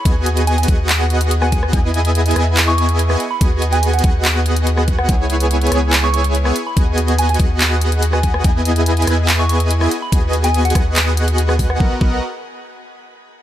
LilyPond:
<<
  \new Staff \with { instrumentName = "Synth bell" } { \time 4/4 \key b \major \tempo 4 = 143 r4 gis''16 gis''16 r4. r16 gis''16 r8 | r2 r16 cis'''16 cis'''16 r4 b''16 | r8. gis''16 r16 fis''16 r2 r16 fis''16 | r2 r16 cis'''16 cis'''16 r4 b''16 |
r4 gis''16 gis''16 r4. r16 gis''16 gis''8 | r2 r16 cis'''16 cis'''16 r4 b''16 | r8. gis''16 r16 fis''16 r2 r16 fis''16 | r1 | }
  \new Staff \with { instrumentName = "Supersaw synth" } { \time 4/4 \key b \major <b fis' gis' dis'' gis''>4. <b fis' gis' dis'' fis''>2~ <b fis' gis' dis'' fis''>8 | <b e' gis' dis'' gis''>4. <b e' gis' dis'' gis''>2 r8 | <b fis' gis' dis'' gis''>4. <b fis' gis' dis'' fis''>2~ <b fis' gis' dis'' fis''>8 | <b e' gis' cis'' gis''>4. <b e' gis' cis'' gis''>2 r8 |
<b fis' gis' dis'' gis''>4. <b fis' gis' dis'' fis''>2~ <b fis' gis' dis'' fis''>8 | <b e' gis' dis'' gis''>4. <b e' gis' dis'' gis''>2 r8 | <b fis' gis' dis'' gis''>4. <b fis' gis' dis'' fis''>2~ <b fis' gis' dis'' fis''>8 | <b fis' ais' dis'' fis''>8 <b fis' ais' dis'' fis''>8 r2. | }
  \new Staff \with { instrumentName = "Sub bass" } { \clef bass \time 4/4 \key b \major dis,4. dis,2~ dis,8 | e,4. e,2 r8 | dis,4. dis,2~ dis,8 | cis,4. cis,2 r8 |
dis,4. dis,2~ dis,8 | e,4. e,2 r8 | dis,4. dis,2~ dis,8 | b,,8 b,,8 r2. | }
  \new DrumStaff \with { instrumentName = "Drums" } \drummode { \time 4/4 <hh bd>8 hh16 hh16 hh16 hh32 hh32 <hh bd>8 <hc hh>8 hh16 hh16 hh16 ss16 <hh bd>16 ss16 | <hh bd>8 hh16 hh16 hh16 hh32 hh32 <hh ss>8 <hc hh>8 hh16 hh16 hh16 ss16 hh8 | <hh bd>8 hh16 hh16 hh16 hh32 hh32 <hh bd>8 <hc hh>8 hh16 hh16 hh16 ss16 <hh bd>16 ss16 | <hh bd>8 hh16 hh16 hh16 hh32 hh32 <hh ss>8 <hc hh>8 hh16 hh16 hh16 ss16 hh8 |
<hh bd>8 hh16 hh16 hh16 hh32 hh32 <hh bd>8 <hc hh>8 hh16 hh16 hh16 ss16 <hh bd>16 ss16 | <hh bd>8 hh16 hh16 hh16 hh32 hh32 <hh ss>8 <hc hh>8 hh16 hh16 hh16 ss16 hh8 | <hh bd>8 hh16 hh16 hh16 hh32 hh32 <hh bd ss>8 <hc hh>8 hh16 hh16 hh16 ss16 <hho bd>16 ss16 | bd8 bd8 r4 r4 r4 | }
>>